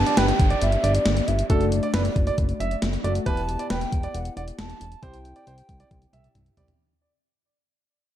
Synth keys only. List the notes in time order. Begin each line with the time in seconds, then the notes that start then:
Already playing: B3 D4 G4
1.50 A3 D4 F#4
3.04 A3 D4 F#4
3.26 B3 E4 G4
5.03 C4 E4 G4
6.57 C4 E4 G4